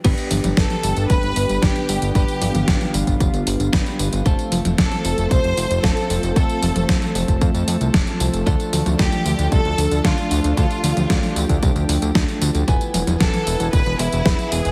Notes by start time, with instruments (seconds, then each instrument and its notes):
0.04 analog synth bass G1, analog synth pad D3 G3 B3 G4, clean electric guitar B3 D4 G4 B4, kick, closed hi-hat, tambourine, crash
0.18 closed hi-hat, tambourine
0.31 analog synth bass G1, open hi-hat, high tom, tambourine
0.44 analog synth bass G1, closed hi-hat, high tom, tambourine
0.57 analog synth bass G1, violin section A4, kick, snare, closed hi-hat, tambourine
0.70 closed hi-hat, high tom, tambourine
0.83 analog synth bass G1, open hi-hat, tambourine
0.97 analog synth bass G1, closed hi-hat, tambourine
1.10 analog synth bass F1, violin section B4, kick, closed hi-hat, tambourine
1.23 analog synth bass G1, closed hi-hat
1.36 analog synth bass G1, open hi-hat, tambourine
1.49 analog synth bass G1, closed hi-hat, tambourine
1.62 analog synth bass G1, clean electric guitar B3 D4 G4 B4, violin section G4, kick, snare, closed hi-hat, tambourine
1.76 snare, closed hi-hat, tambourine
1.89 analog synth bass G1, open hi-hat, tambourine
2.02 analog synth bass G1, closed hi-hat, tambourine
2.15 analog synth bass G1, clean electric guitar B3 D4 G4 B4, analog synth pad F4, violin section G4, kick, closed hi-hat, tambourine
2.28 closed hi-hat, tambourine
2.42 analog synth bass G1, open hi-hat, high tom, tambourine
2.55 analog synth bass G1, closed hi-hat, high tom, tambourine
2.68 analog synth bass G1, kick, snare, closed hi-hat, tambourine
2.81 closed hi-hat, high tom, tambourine
2.94 analog synth bass G1, open hi-hat, tambourine
3.07 analog synth bass G1, kick, closed hi-hat, tambourine
3.20 analog synth bass F1, kick, closed hi-hat, tambourine
3.34 analog synth bass G1, closed hi-hat, tambourine
3.47 analog synth bass G1, open hi-hat, tambourine
3.60 analog synth bass G1, closed hi-hat, tambourine
3.73 analog synth bass G1, clean electric guitar B3 D4 G4 B4, kick, snare, closed hi-hat, tambourine
3.86 closed hi-hat, tambourine
3.99 analog synth bass G1, open hi-hat, tambourine
4.13 analog synth bass G1, closed hi-hat, tambourine
4.25 analog synth bass F1, analog synth pad F3 A3 C4 A4, clean electric guitar A3 C4 F4 A4, kick, closed hi-hat, tambourine
4.39 closed hi-hat, tambourine
4.52 analog synth bass F1, open hi-hat, high tom, tambourine
4.65 analog synth bass F1, closed hi-hat, high tom, tambourine
4.78 analog synth bass F1, violin section A4, kick, snare, closed hi-hat, tambourine
4.92 closed hi-hat, high tom, tambourine
5.05 analog synth bass F1, open hi-hat, tambourine
5.18 analog synth bass F1, closed hi-hat, tambourine
5.31 analog synth bass C2, violin section C5, kick, closed hi-hat, tambourine
5.44 analog synth bass F1, closed hi-hat
5.57 analog synth bass F1, open hi-hat, tambourine
5.70 analog synth bass F1, closed hi-hat, tambourine
5.83 analog synth bass F1, clean electric guitar A3 C4 F4 A4, violin section A4, kick, snare, closed hi-hat, tambourine
5.97 snare, closed hi-hat, tambourine
6.10 analog synth bass F1, open hi-hat, tambourine
6.23 analog synth bass F1, closed hi-hat, tambourine
6.36 analog synth bass F1, clean electric guitar A3 C4 F4 A4, violin section A4, kick, closed hi-hat, tambourine
6.50 closed hi-hat, tambourine
6.63 analog synth bass F1, open hi-hat, high tom, tambourine
6.76 analog synth bass F1, closed hi-hat, high tom, tambourine
6.89 analog synth bass F1, kick, snare, closed hi-hat, tambourine
7.02 closed hi-hat, high tom, tambourine
7.15 analog synth bass F1, open hi-hat, tambourine
7.28 analog synth bass F1, kick, closed hi-hat, tambourine
7.41 analog synth bass F2, kick, closed hi-hat, tambourine
7.54 analog synth bass F2, closed hi-hat, tambourine
7.68 analog synth bass F2, open hi-hat, tambourine
7.81 analog synth bass C2, closed hi-hat, tambourine
7.94 analog synth bass F1, kick, snare, closed hi-hat, tambourine
8.07 closed hi-hat, tambourine
8.20 analog synth bass C2, open hi-hat, tambourine
8.33 analog synth bass F1, closed hi-hat, tambourine
8.46 analog synth bass D2, clean electric guitar A3 D4 F4 A4, analog synth pad D4, kick, closed hi-hat, tambourine
8.60 closed hi-hat, tambourine
8.73 analog synth bass D2, open hi-hat, high tom, tambourine
8.86 analog synth bass D2, closed hi-hat, high tom, tambourine
8.99 analog synth bass D2, violin section G4, kick, snare, closed hi-hat, tambourine
9.12 closed hi-hat, high tom, tambourine
9.26 analog synth bass D2, open hi-hat, tambourine
9.39 analog synth bass D2, closed hi-hat, tambourine
9.52 analog synth bass C2, violin section A4, kick, closed hi-hat, tambourine
9.65 analog synth bass D2, closed hi-hat
9.78 analog synth bass D2, open hi-hat, tambourine
9.91 analog synth bass D2, closed hi-hat, tambourine
10.04 analog synth bass D2, clean electric guitar A3 D4 F4 A4, violin section F4, kick, snare, closed hi-hat, tambourine
10.18 snare, closed hi-hat, tambourine
10.31 analog synth bass D2, open hi-hat, tambourine
10.44 analog synth bass D2, closed hi-hat, tambourine
10.57 analog synth bass D2, clean electric guitar A3 D4 F4 A4, violin section F4, analog synth pad G4, kick, closed hi-hat, tambourine
10.71 closed hi-hat, tambourine
10.84 analog synth bass D2, open hi-hat, high tom, tambourine
10.97 analog synth bass D2, closed hi-hat, high tom, tambourine
11.10 analog synth bass D2, kick, snare, closed hi-hat, tambourine
11.23 closed hi-hat, high tom, tambourine
11.36 analog synth bass D2, open hi-hat, tambourine
11.49 analog synth bass D2, kick, closed hi-hat, tambourine
11.63 analog synth bass C2, kick, closed hi-hat, tambourine
11.76 analog synth bass D2, closed hi-hat, tambourine
11.89 analog synth bass D2, open hi-hat, tambourine
12.02 analog synth bass D2, closed hi-hat, tambourine
12.15 analog synth bass D2, clean electric guitar A3 D4 F4 A4, kick, snare, closed hi-hat, tambourine
12.28 closed hi-hat, tambourine
12.41 analog synth bass D2, open hi-hat, tambourine
12.55 analog synth bass D2, closed hi-hat, tambourine
12.68 analog synth bass E1, analog synth pad E3 B3 G#5, clean electric guitar B3 E4 B4 G#5, kick, closed hi-hat, tambourine
12.81 closed hi-hat, tambourine
12.94 analog synth bass E1, open hi-hat, high tom, tambourine
13.07 analog synth bass E1, closed hi-hat, high tom, tambourine
13.20 analog synth bass E1, violin section A4, kick, snare, closed hi-hat, tambourine
13.34 closed hi-hat, high tom, tambourine
13.47 analog synth bass E1, open hi-hat, tambourine
13.60 analog synth bass E1, closed hi-hat, tambourine
13.73 analog synth bass D1, violin section B4, kick, closed hi-hat, tambourine
13.86 analog synth bass E1, closed hi-hat
13.99 analog synth bass E1, violin section E4, open hi-hat, tambourine
14.12 analog synth bass E1, closed hi-hat, tambourine
14.25 analog synth bass E1, clean electric guitar B3 E4 G#4 B4, kick, snare, closed hi-hat, tambourine
14.39 snare, closed hi-hat, tambourine
14.52 analog synth bass E1, violin section G#4, open hi-hat, tambourine
14.65 analog synth bass E1, closed hi-hat, tambourine